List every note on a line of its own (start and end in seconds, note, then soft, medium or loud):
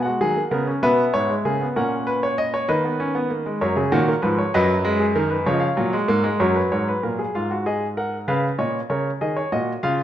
0.03 0.20 G#3 medium
0.03 0.20 F#4 medium
0.03 0.80 F#5 medium
0.21 0.40 D#3 medium
0.21 0.36 F#3 medium
0.21 0.40 G#4 loud
0.37 0.51 A#3 medium
0.51 0.71 C#3 medium
0.51 0.66 B3 medium
0.51 0.71 A#4 medium
0.67 0.82 C#4 medium
0.83 1.02 B2 medium
0.83 1.28 B3 medium
0.83 1.02 B4 loud
0.83 1.73 E5 medium
1.14 1.33 G#2 medium
1.14 1.33 C#5 loud
1.30 1.45 G#3 medium
1.45 1.64 C#3 medium
1.45 1.60 A#3 medium
1.45 1.64 G#4 medium
1.61 1.76 B3 medium
1.76 2.66 A#2 medium
1.76 2.66 C#4 medium
1.76 1.95 A#4 medium
1.76 2.66 F#5 medium
2.07 2.22 B4 medium
2.23 2.38 C#5 medium
2.38 2.53 D#5 loud
2.54 2.69 C#5 medium
2.68 3.58 D#3 medium
2.68 2.84 A#3 medium
2.68 3.58 B4 loud
2.68 3.58 D#5 medium
2.84 2.99 B3 medium
3.00 3.15 C#4 medium
3.15 3.30 B3 medium
3.30 3.45 A#3 medium
3.46 3.61 G#3 medium
3.61 3.81 F#2 medium
3.61 3.76 F#3 medium
3.61 3.76 A#4 medium
3.61 4.37 C#5 medium
3.76 3.91 C#3 medium
3.76 3.91 G#4 medium
3.92 4.11 A#2 medium
3.92 4.11 D#3 loud
3.92 4.07 F#4 loud
4.08 4.23 A#4 medium
4.22 4.42 G#2 medium
4.22 4.42 F3 loud
4.22 4.37 B4 medium
4.38 4.53 C#5 medium
4.54 5.44 F#2 loud
4.54 4.73 F#3 loud
4.54 4.99 B4 loud
4.54 5.44 D#5 loud
4.85 5.04 G#3 loud
5.00 5.15 G#4 medium
5.15 5.35 D#3 loud
5.15 5.31 A#4 medium
5.30 5.46 B4 medium
5.46 5.66 C#3 medium
5.46 5.66 F3 loud
5.46 6.37 C#5 medium
5.46 5.53 F5 medium
5.53 5.60 D#5 medium
5.60 6.37 F5 medium
5.77 5.97 A#2 medium
5.77 5.92 F#3 loud
5.93 6.08 G#3 medium
6.08 6.28 G#2 medium
6.08 6.24 A#3 loud
6.24 6.39 G#3 medium
6.40 6.59 F#2 loud
6.40 7.32 F#3 medium
6.40 6.55 A#4 medium
6.40 6.70 C#5 medium
6.56 6.71 B4 medium
6.72 6.91 G#2 medium
6.72 6.87 C#5 medium
6.88 7.03 B4 medium
7.03 7.23 A#2 medium
7.03 7.18 A#4 medium
7.19 7.34 G#4 medium
7.35 8.26 G#2 medium
7.35 7.50 F4 medium
7.35 7.54 F5 medium
7.51 7.66 F#4 medium
7.66 7.85 G#4 medium
7.66 7.86 D#5 medium
7.97 8.16 A#4 medium
7.97 8.17 F#5 medium
8.28 8.47 C#3 medium
8.28 8.47 B4 medium
8.28 8.47 F5 medium
8.59 8.78 A#2 medium
8.59 8.78 C#5 medium
8.59 8.78 D#5 medium
8.90 9.09 C#3 medium
8.90 9.09 A#4 medium
8.90 9.09 C#5 medium
9.21 9.41 D#3 medium
9.21 9.41 G#4 medium
9.21 9.37 D#5 medium
9.37 9.52 C#5 medium
9.52 9.72 A#2 medium
9.52 9.72 F#4 medium
9.52 9.72 D#5 medium
9.83 10.03 C#3 medium
9.83 10.03 F4 medium
9.83 10.03 F5 medium